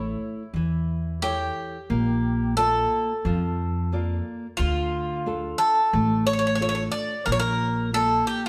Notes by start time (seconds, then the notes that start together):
Already playing: A1 E4 A4 C#5
0.54 E2 E3
1.22 E4 G4 A4 C#5
1.90 A#1 A#3
2.57 A#3 F4 A4 D5
3.25 F2 F3
3.92 A#3 F4 D5
4.57 D2 D3 F4
5.26 D4 F4 A4
5.58 A4
5.93 A1 A3
6.27 C#5
6.33 C#5
6.39 C#5
6.47 C#5
6.55 C#5
6.60 D4 F4 A4 C#5
6.69 C#5
6.75 C#5
6.92 D5
7.26 A#1 A#3 A#4
7.32 C#5
7.40 A#4
7.93 A#3 F4 A4 D5
8.27 G4